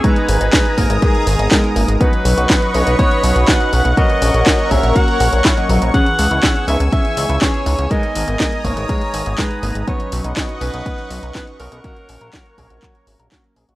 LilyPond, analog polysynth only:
\new Staff \with { instrumentName = "Analog polysynth" } { \time 4/4 \key b \major \tempo 4 = 122 <gis b dis' ais''>4. <gis b dis' ais'>4. <gis b dis' ais'>4 | <fis cis' dis' b'>4. <fis cis' dis' b'>4. <fis cis' dis' b'>4 | <fis ais cis' ais'>4. <fis ais cis' ais'>4. r16 <fis ais cis' dis''>8. | <e b cis' gis'>4. <e b cis' gis'>4. <e b cis' gis'>4 |
<gis b dis' ais'>4. <gis b dis' ais'>4. <gis b dis' ais''>4 | <fis cis' dis' b'>4. <fis cis' dis' b'>4. <fis cis' dis' b'>4 | <fis ais cis' ais'>4. <fis ais cis' ais'>4. <fis ais cis' ais'>4 | }